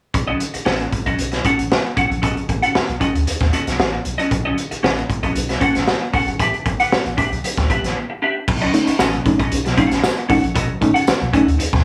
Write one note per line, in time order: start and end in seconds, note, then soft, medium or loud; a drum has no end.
0.14 0.34 B1 loud
0.14 muted clean electric guitar stroke soft
0.14 kick loud
0.14 closed hi-hat medium
0.27 0.39 C#4 medium
0.27 0.39 F#4 medium
0.27 0.40 A4 medium
0.27 0.40 D#5 medium
0.40 muted clean electric guitar stroke soft
0.40 closed hi-hat medium
0.54 0.59 A1 soft
0.54 muted clean electric guitar stroke soft
0.54 closed hi-hat soft
0.65 0.87 A1 medium
0.65 0.84 C#4 medium
0.65 0.84 F#4 medium
0.65 0.84 A4 medium
0.65 0.85 D#5 medium
0.65 snare loud
0.80 closed hi-hat soft
0.92 muted clean electric guitar stroke soft
0.92 kick medium
0.92 closed hi-hat medium
1.06 1.16 B1 medium
1.06 1.20 C#4 soft
1.06 1.20 F#4 soft
1.06 1.19 A4 medium
1.06 1.19 D#5 soft
1.06 kick medium
1.06 closed hi-hat soft
1.19 1.39 B1 loud
1.19 closed hi-hat medium
1.32 muted clean electric guitar stroke soft
1.32 snare soft
1.32 closed hi-hat soft
1.45 1.63 C#4 medium
1.45 1.58 F#4 medium
1.45 1.58 A4 medium
1.45 1.58 F#5 medium
1.45 kick medium
1.45 closed hi-hat medium
1.58 1.68 A1 medium
1.58 muted clean electric guitar stroke soft
1.58 closed hi-hat medium
1.70 muted clean electric guitar stroke soft
1.70 snare loud
1.85 muted clean electric guitar stroke soft
1.97 2.08 B1 medium
1.97 2.15 C#4 medium
1.97 2.10 F#4 medium
1.97 2.09 A4 medium
1.97 2.09 F#5 medium
1.97 kick medium
1.97 closed hi-hat medium
2.10 2.20 A#1 medium
2.10 muted clean electric guitar stroke soft
2.10 closed hi-hat soft
2.22 2.34 B1 loud
2.22 2.40 C#4 medium
2.22 2.36 F#4 medium
2.22 2.36 A4 medium
2.22 2.35 D#5 medium
2.22 kick loud
2.22 closed hi-hat medium
2.36 muted clean electric guitar stroke soft
2.36 closed hi-hat soft
2.49 2.60 A1 medium
2.49 muted clean electric guitar stroke soft
2.49 kick medium
2.49 closed hi-hat medium
2.62 2.74 C#4 medium
2.62 2.74 F#4 medium
2.62 2.75 A4 medium
2.62 2.75 F#5 medium
2.62 closed hi-hat medium
2.75 2.81 B1 soft
2.75 muted clean electric guitar stroke soft
2.75 snare loud
2.89 2.98 B1 medium
2.89 closed hi-hat soft
3.00 3.15 C#4 medium
3.00 3.15 F#4 medium
3.00 3.15 A4 medium
3.00 3.14 D#5 medium
3.00 kick medium
3.00 closed hi-hat medium
3.15 3.24 D2 medium
3.15 muted clean electric guitar stroke soft
3.15 closed hi-hat soft
3.27 3.33 D#2 soft
3.27 muted clean electric guitar stroke soft
3.27 closed hi-hat medium
3.41 3.50 D#2 medium
3.41 kick medium
3.41 snare soft
3.53 3.67 C#4 medium
3.53 3.67 F#4 medium
3.53 3.66 A4 medium
3.53 3.66 D#5 medium
3.53 closed hi-hat medium
3.67 3.77 B1 medium
3.67 muted clean electric guitar stroke soft
3.67 snare soft
3.67 closed hi-hat soft
3.79 3.99 A1 loud
3.79 muted clean electric guitar stroke soft
3.79 snare loud
3.93 muted clean electric guitar stroke soft
4.05 4.16 B1 medium
4.05 closed hi-hat medium
4.18 4.30 C#4 medium
4.18 4.30 F#4 medium
4.18 4.31 A4 medium
4.18 4.31 D#5 medium
4.18 closed hi-hat soft
4.31 4.51 B1 medium
4.31 muted clean electric guitar stroke soft
4.31 kick loud
4.31 closed hi-hat medium
4.45 4.56 C#4 medium
4.45 4.57 F#4 medium
4.45 4.57 A4 medium
4.45 4.58 D#5 medium
4.57 muted clean electric guitar stroke soft
4.57 closed hi-hat medium
4.71 4.76 A1 soft
4.71 muted clean electric guitar stroke medium
4.71 closed hi-hat soft
4.83 5.04 A1 medium
4.83 5.01 C#4 medium
4.83 5.01 F#4 medium
4.83 5.02 A4 medium
4.83 5.02 D#5 medium
4.83 snare loud
4.98 closed hi-hat soft
5.09 muted clean electric guitar stroke soft
5.09 kick medium
5.09 closed hi-hat medium
5.23 5.33 B1 medium
5.23 5.36 C#4 soft
5.23 5.36 F#4 soft
5.23 5.36 A4 soft
5.23 5.36 D#5 medium
5.23 kick medium
5.23 closed hi-hat soft
5.36 5.56 B1 medium
5.36 closed hi-hat medium
5.49 muted clean electric guitar stroke soft
5.49 snare soft
5.49 closed hi-hat soft
5.60 5.79 C#4 medium
5.60 5.75 F#4 medium
5.60 5.74 A4 medium
5.60 5.75 F#5 medium
5.60 kick medium
5.60 closed hi-hat medium
5.75 5.85 A1 medium
5.75 muted clean electric guitar stroke soft
5.75 snare soft
5.75 closed hi-hat soft
5.87 muted clean electric guitar stroke soft
5.87 snare medium
6.01 muted clean electric guitar stroke soft
6.13 6.24 B1 medium
6.13 6.31 C#4 medium
6.13 6.28 F#4 medium
6.13 6.28 A4 medium
6.13 6.28 F#5 medium
6.13 kick medium
6.13 open hi-hat medium
6.28 6.37 G#1 medium
6.28 muted clean electric guitar stroke soft
6.28 closed hi-hat soft
6.39 6.50 A1 medium
6.39 6.58 D4 medium
6.39 6.55 G4 medium
6.39 6.54 B4 medium
6.39 6.53 E5 medium
6.39 kick loud
6.39 closed hi-hat medium
6.54 muted clean electric guitar stroke soft
6.54 closed hi-hat soft
6.66 6.77 G1 medium
6.66 muted clean electric guitar stroke soft
6.66 kick loud
6.66 closed hi-hat medium
6.80 6.91 D4 medium
6.80 6.92 G4 medium
6.80 6.92 B4 medium
6.80 6.92 F#5 medium
6.80 closed hi-hat medium
6.92 6.97 A1 soft
6.92 muted clean electric guitar stroke soft
6.92 snare loud
7.06 7.15 A1 medium
7.06 closed hi-hat soft
7.17 7.32 D4 medium
7.17 7.32 G4 medium
7.17 7.31 B4 medium
7.17 7.30 E5 medium
7.17 kick medium
7.17 closed hi-hat medium
7.32 7.41 B1 medium
7.32 muted clean electric guitar stroke soft
7.32 closed hi-hat soft
7.44 muted clean electric guitar stroke soft
7.44 closed hi-hat medium
7.57 7.67 D2 medium
7.57 kick medium
7.57 snare soft
7.57 closed hi-hat soft
7.70 7.80 B1 medium
7.70 7.84 D4 medium
7.70 7.84 G4 medium
7.70 7.83 B4 medium
7.70 7.83 E5 medium
7.70 kick medium
7.70 closed hi-hat medium
7.84 7.93 A1 medium
7.84 muted clean electric guitar stroke soft
7.84 snare soft
7.84 closed hi-hat medium
7.96 muted clean electric guitar stroke soft
8.10 muted clean electric guitar stroke soft
8.22 8.40 D4 medium
8.22 8.37 G4 medium
8.22 8.36 B4 medium
8.22 8.35 E5 medium
8.37 muted clean electric guitar stroke soft
8.48 8.68 B1 loud
8.48 8.60 B2 medium
8.48 8.60 F#3 medium
8.48 muted clean electric guitar stroke soft
8.48 kick loud
8.48 crash loud
8.61 8.73 C#4 medium
8.61 8.73 F#4 medium
8.61 8.73 A4 medium
8.61 8.74 D#5 medium
8.61 closed hi-hat soft
8.74 8.86 A3 loud
8.74 8.86 C#4 medium
8.74 8.86 D#4 loud
8.74 muted clean electric guitar stroke soft
8.74 closed hi-hat medium
8.87 8.92 A1 soft
8.87 8.93 C#4 soft
8.87 8.93 D#4 soft
8.87 muted clean electric guitar stroke medium
8.87 closed hi-hat medium
8.99 9.20 A1 loud
8.99 9.17 C#4 medium
8.99 9.05 C#4 soft
8.99 9.06 D#4 soft
8.99 9.18 F#4 medium
8.99 9.18 A4 medium
8.99 9.18 D#5 loud
8.99 snare loud
8.99 tambourine loud
9.13 9.24 B2 medium
9.13 9.24 F#3 medium
9.13 closed hi-hat soft
9.26 9.38 A3 medium
9.26 9.38 C#4 medium
9.26 9.38 D#4 medium
9.26 muted clean electric guitar stroke soft
9.26 kick medium
9.26 closed hi-hat medium
9.39 9.49 B1 medium
9.39 9.53 C#4 soft
9.39 9.53 F#4 soft
9.39 9.52 A4 soft
9.39 9.52 D#5 medium
9.39 kick medium
9.39 closed hi-hat soft
9.52 9.72 B1 loud
9.52 9.57 C#4 soft
9.52 9.57 D#4 soft
9.52 closed hi-hat medium
9.65 9.76 B2 medium
9.65 9.76 F#3 medium
9.65 muted clean electric guitar stroke soft
9.65 snare soft
9.65 closed hi-hat soft
9.77 9.90 A3 medium
9.77 9.98 C#4 loud
9.77 9.90 C#4 medium
9.77 9.90 D#4 medium
9.77 9.91 F#4 medium
9.77 9.91 A4 medium
9.77 9.91 F#5 medium
9.77 kick medium
9.77 closed hi-hat medium
9.91 10.01 A1 medium
9.91 muted clean electric guitar stroke soft
9.91 snare soft
9.91 closed hi-hat medium
10.04 muted clean electric guitar stroke soft
10.04 snare loud
10.04 tambourine medium
10.17 muted clean electric guitar stroke soft
10.17 closed hi-hat soft
10.29 10.40 B1 medium
10.29 10.41 A3 medium
10.29 10.47 C#4 medium
10.29 10.42 C#4 medium
10.29 10.42 D#4 loud
10.29 10.43 F#4 medium
10.29 10.43 A4 medium
10.29 10.42 F#5 medium
10.29 kick loud
10.29 open hi-hat medium
10.43 10.53 A#1 loud
10.43 muted clean electric guitar stroke soft
10.43 closed hi-hat soft
10.55 10.66 B1 loud
10.55 10.68 B2 medium
10.55 10.68 F#3 medium
10.55 10.73 C#4 medium
10.55 10.68 F#4 medium
10.55 10.68 A4 medium
10.55 10.67 D#5 medium
10.55 kick loud
10.55 closed hi-hat loud
10.68 muted clean electric guitar stroke medium
10.81 10.92 A1 medium
10.81 10.93 A3 loud
10.81 10.93 C#4 medium
10.81 10.94 D#4 loud
10.81 muted clean electric guitar stroke soft
10.81 kick medium
10.81 closed hi-hat medium
10.94 11.06 C#4 medium
10.94 11.06 F#4 medium
10.94 11.07 A4 medium
10.94 11.07 F#5 medium
10.94 closed hi-hat medium
11.07 11.13 B1 soft
11.07 11.13 C#4 soft
11.07 11.13 D#4 soft
11.07 muted clean electric guitar stroke soft
11.07 snare loud
11.07 tambourine loud
11.21 11.31 B1 medium
11.21 11.32 B2 medium
11.21 11.32 F#3 medium
11.21 closed hi-hat soft
11.33 11.45 A3 medium
11.33 11.47 C#4 medium
11.33 11.45 C#4 medium
11.33 11.45 D#4 medium
11.33 11.47 F#4 medium
11.33 11.46 A4 medium
11.33 11.46 D#5 medium
11.33 kick medium
11.33 closed hi-hat medium
11.47 11.56 D2 medium
11.47 muted clean electric guitar stroke soft
11.47 closed hi-hat soft
11.58 11.65 D#2 soft
11.58 11.65 C#4 soft
11.58 11.65 D#4 soft
11.58 muted clean electric guitar stroke soft
11.58 closed hi-hat medium
11.73 11.83 D#2 medium
11.73 11.83 B2 medium
11.73 11.84 F#3 medium
11.73 kick loud
11.73 snare soft